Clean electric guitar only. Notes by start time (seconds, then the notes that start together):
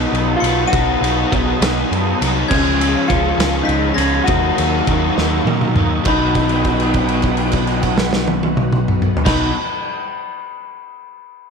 Already playing: D#4
0.37 F4
0.68 F#4
2.49 C#4
3.08 F4
3.63 D#4
3.95 C#4
4.24 F#4
6.07 D#4
9.25 D#4